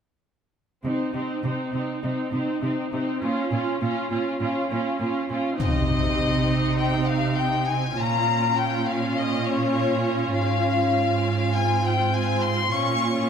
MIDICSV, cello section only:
0, 0, Header, 1, 2, 480
1, 0, Start_track
1, 0, Tempo, 594059
1, 687, Time_signature, 4, 2, 24, 8
1, 10743, End_track
2, 0, Start_track
2, 0, Title_t, "Cello section"
2, 0, Program_c, 0, 48
2, 686, Note_on_c, 0, 48, 39
2, 751, Note_off_c, 0, 48, 0
2, 922, Note_on_c, 0, 48, 38
2, 986, Note_off_c, 0, 48, 0
2, 1162, Note_on_c, 0, 48, 38
2, 1227, Note_off_c, 0, 48, 0
2, 1402, Note_on_c, 0, 48, 35
2, 1467, Note_off_c, 0, 48, 0
2, 1642, Note_on_c, 0, 48, 39
2, 1707, Note_off_c, 0, 48, 0
2, 1886, Note_on_c, 0, 48, 37
2, 1951, Note_off_c, 0, 48, 0
2, 2122, Note_on_c, 0, 48, 39
2, 2187, Note_off_c, 0, 48, 0
2, 2367, Note_on_c, 0, 48, 42
2, 2432, Note_off_c, 0, 48, 0
2, 2605, Note_on_c, 0, 46, 46
2, 2670, Note_off_c, 0, 46, 0
2, 2846, Note_on_c, 0, 46, 50
2, 2910, Note_off_c, 0, 46, 0
2, 3086, Note_on_c, 0, 46, 48
2, 3150, Note_off_c, 0, 46, 0
2, 3326, Note_on_c, 0, 46, 40
2, 3390, Note_off_c, 0, 46, 0
2, 3563, Note_on_c, 0, 46, 45
2, 3628, Note_off_c, 0, 46, 0
2, 3803, Note_on_c, 0, 46, 51
2, 3867, Note_off_c, 0, 46, 0
2, 4043, Note_on_c, 0, 46, 42
2, 4108, Note_off_c, 0, 46, 0
2, 4288, Note_on_c, 0, 46, 38
2, 4353, Note_off_c, 0, 46, 0
2, 4531, Note_on_c, 0, 48, 46
2, 6417, Note_off_c, 0, 48, 0
2, 6447, Note_on_c, 0, 46, 42
2, 8335, Note_off_c, 0, 46, 0
2, 8370, Note_on_c, 0, 44, 44
2, 10256, Note_off_c, 0, 44, 0
2, 10284, Note_on_c, 0, 46, 50
2, 10743, Note_off_c, 0, 46, 0
2, 10743, End_track
0, 0, End_of_file